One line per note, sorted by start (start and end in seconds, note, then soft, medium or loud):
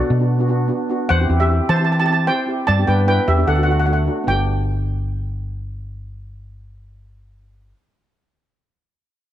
0.00 0.65 F#4 medium
0.00 0.65 D5 medium
0.10 0.70 B2 loud
0.19 0.31 B3 medium
0.19 0.32 D4 medium
0.19 0.32 F#4 medium
0.39 0.45 B3 medium
0.39 0.46 D4 medium
0.39 0.46 F#4 medium
0.48 0.61 B3 loud
0.48 0.62 D4 medium
0.48 0.62 F#4 loud
0.68 0.81 B3 medium
0.68 0.81 D4 medium
0.68 0.82 F#4 medium
0.89 1.07 B3 medium
0.89 1.08 D4 medium
0.89 1.08 F#4 loud
1.09 1.25 E2 loud
1.09 1.38 C5 medium
1.09 1.37 F#5 loud
1.20 1.25 C4 medium
1.20 1.26 E4 medium
1.20 1.26 G4 medium
1.28 1.59 E2 loud
1.28 1.41 C4 medium
1.28 1.42 E4 medium
1.28 1.42 G4 medium
1.40 1.67 G4 medium
1.40 1.67 E5 medium
1.49 1.67 C4 medium
1.49 1.67 E4 medium
1.49 1.68 G4 medium
1.69 2.29 E3 loud
1.69 1.77 C5 medium
1.69 1.75 A5 loud
1.77 1.91 C4 medium
1.77 1.91 E4 medium
1.77 1.83 A5 medium
1.81 1.92 G4 medium
1.81 1.91 A5 medium
1.92 1.98 A5 medium
2.00 2.05 C4 medium
2.00 2.05 E4 medium
2.00 2.06 G4 medium
2.00 2.05 A5 loud
2.06 2.21 C4 medium
2.06 2.22 E4 medium
2.06 2.11 A5 medium
2.10 2.22 G4 medium
2.10 2.21 A5 medium
2.27 2.41 C4 medium
2.27 2.41 E4 medium
2.27 2.42 G4 medium
2.27 2.65 C5 medium
2.27 2.69 G5 loud
2.46 2.65 C4 medium
2.46 2.66 E4 medium
2.46 2.67 G4 medium
2.67 2.83 G2 medium
2.67 2.87 D5 medium
2.67 2.88 A5 loud
2.78 2.84 B3 medium
2.78 2.84 D4 medium
2.78 2.85 G4 medium
2.87 3.18 G2 loud
2.87 3.00 B3 medium
2.87 3.00 D4 medium
2.87 3.01 G4 medium
2.87 3.07 B4 medium
2.87 3.07 G5 medium
3.06 3.25 B3 medium
3.06 3.25 D4 medium
3.06 3.26 E4 medium
3.06 3.27 B4 medium
3.06 3.29 G5 loud
3.28 3.43 E2 loud
3.28 3.47 G4 medium
3.28 3.48 E5 medium
3.37 3.47 B3 medium
3.37 3.48 D4 medium
3.37 3.48 G4 medium
3.47 4.08 D2 loud
3.47 3.55 A4 medium
3.47 3.54 F#5 medium
3.56 3.63 A3 medium
3.56 3.64 D4 medium
3.56 3.64 F#4 medium
3.56 3.62 F#5 medium
3.63 3.79 A3 medium
3.63 3.80 D4 medium
3.63 3.70 F#5 medium
3.68 3.80 F#4 medium
3.68 3.78 F#5 medium
3.80 3.85 F#5 medium
3.86 3.99 A3 medium
3.86 4.00 D4 medium
3.86 4.00 F#4 medium
3.86 3.92 F#5 medium
3.93 4.00 F#5 medium
4.06 4.25 A3 medium
4.06 4.25 D4 medium
4.06 4.26 F#4 medium
4.24 7.72 G1 medium
4.24 7.68 B3 medium
4.24 7.71 D4 medium
4.28 7.75 G4 medium
4.28 7.72 G5 medium